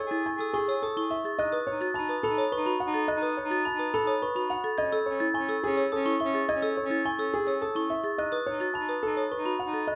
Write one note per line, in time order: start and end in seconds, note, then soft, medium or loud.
0.00 0.16 C#5 medium
0.00 0.16 C#6 medium
0.07 0.27 G#4 medium
0.11 0.30 E4 medium
0.11 0.30 A6 medium
0.26 0.44 G#5 medium
0.26 0.44 C#6 medium
0.37 0.57 G#4 medium
0.37 0.58 A4 medium
0.37 0.58 E6 medium
0.53 0.72 G#4 loud
0.53 0.72 C#6 medium
0.66 0.86 G#4 medium
0.66 0.86 C#5 medium
0.66 0.87 E6 medium
0.82 1.01 A4 medium
0.82 1.01 D#6 medium
0.96 1.15 E4 medium
0.96 1.16 G#4 soft
0.96 1.10 C#6 loud
1.10 1.29 E5 medium
1.10 1.29 C#6 medium
1.25 1.43 G#4 medium
1.25 1.43 A6 medium
1.38 1.59 D#4 soft
1.38 1.57 D#5 loud
1.38 1.57 F#6 medium
1.52 1.71 B4 medium
1.52 1.71 D#6 medium
1.67 1.89 D#4 medium
1.67 1.85 C#5 medium
1.81 1.99 F#4 medium
1.81 2.00 A6 loud
1.94 2.19 D#4 medium
1.94 2.13 A5 medium
1.94 2.14 B5 medium
2.09 2.28 B4 medium
2.09 2.28 D#6 medium
2.23 2.48 D#4 medium
2.23 2.42 A4 loud
2.23 2.42 B5 loud
2.38 2.56 C#5 loud
2.38 2.56 D#6 medium
2.52 2.70 B4 medium
2.52 2.71 C#6 medium
2.57 2.78 D#4 medium
2.66 2.84 F#4 medium
2.66 2.79 B5 loud
2.80 2.99 F#5 medium
2.80 2.99 B5 medium
2.87 3.07 D#4 medium
2.94 3.13 A4 medium
2.94 3.13 A6 medium
3.08 3.27 D#5 loud
3.08 3.27 F#6 loud
3.16 3.37 D#4 medium
3.22 3.41 B4 medium
3.22 3.41 D#6 medium
3.37 3.55 C#5 medium
3.45 3.66 D#4 medium
3.50 3.69 F#4 medium
3.50 3.70 A6 loud
3.65 3.84 A5 medium
3.65 3.84 B5 medium
3.75 3.96 D#4 medium
3.79 3.98 B4 medium
3.79 3.98 D#6 medium
3.94 4.12 A4 loud
3.94 4.12 B5 loud
4.04 4.25 D#4 medium
4.04 4.26 C#5 medium
4.04 4.26 D#6 medium
4.22 4.40 B4 medium
4.22 4.40 C#6 medium
4.34 4.55 D#4 soft
4.34 4.54 F#4 medium
4.34 4.49 B5 loud
4.50 4.68 F#5 medium
4.50 4.68 B5 medium
4.64 4.83 A4 medium
4.64 4.83 A6 medium
4.78 4.99 C#4 soft
4.78 4.97 D#5 loud
4.78 4.97 G#6 loud
4.92 5.11 A4 loud
4.92 5.11 E6 medium
5.06 5.29 C#4 medium
5.06 5.25 C#5 medium
5.20 5.39 E4 medium
5.20 5.39 A6 loud
5.34 5.58 C#4 medium
5.34 5.53 G#5 medium
5.34 5.53 C#6 medium
5.49 5.67 A4 medium
5.49 5.67 E6 medium
5.64 5.87 C#4 medium
5.64 5.82 G#4 loud
5.77 5.96 C#5 medium
5.77 5.96 E6 medium
5.92 6.17 C#4 loud
5.92 6.10 A4 medium
5.92 6.10 D#6 medium
6.06 6.24 E4 medium
6.06 6.19 C#6 loud
6.20 6.39 E5 medium
6.20 6.38 C#6 medium
6.25 6.46 C#4 medium
6.34 6.52 G#4 medium
6.34 6.53 A6 medium
6.49 6.67 D#5 loud
6.49 6.67 G#6 loud
6.55 6.76 C#4 medium
6.62 6.81 A4 loud
6.62 6.81 E6 medium
6.77 6.95 C#5 medium
6.85 7.06 C#4 medium
6.90 7.09 E4 medium
6.90 7.09 A6 loud
7.05 7.23 G#5 medium
7.05 7.23 C#6 medium
7.15 7.36 C#4 medium
7.15 7.37 A4 medium
7.19 7.37 E6 medium
7.34 7.52 G#4 loud
7.44 7.65 C#4 medium
7.44 7.66 C#5 loud
7.44 7.66 E6 medium
7.62 7.80 A4 medium
7.62 7.80 D#6 medium
7.74 7.95 C#4 soft
7.74 7.94 E4 medium
7.74 7.89 C#6 loud
7.90 8.08 E5 medium
7.90 8.08 C#6 medium
8.04 8.22 G#4 medium
8.04 8.22 A6 medium
8.17 8.38 D#4 soft
8.17 8.37 D#5 loud
8.17 8.37 F#6 loud
8.32 8.51 B4 loud
8.32 8.51 D#6 medium
8.46 8.68 D#4 medium
8.46 8.65 C#5 medium
8.60 8.79 F#4 medium
8.60 8.79 A6 medium
8.74 8.98 D#4 medium
8.74 8.93 A5 medium
8.74 8.93 B5 medium
8.89 9.07 B4 medium
8.89 9.07 D#6 medium
9.03 9.27 D#4 medium
9.03 9.21 A4 loud
9.17 9.35 C#5 medium
9.17 9.36 D#6 medium
9.31 9.50 B4 medium
9.31 9.50 C#6 medium
9.36 9.57 D#4 medium
9.45 9.64 F#4 medium
9.45 9.59 B5 loud
9.59 9.78 F#5 medium
9.59 9.78 B5 medium
9.66 9.87 D#4 medium
9.73 9.92 A4 medium
9.73 9.92 A6 medium
9.87 9.95 D#5 medium
9.87 9.95 F#6 medium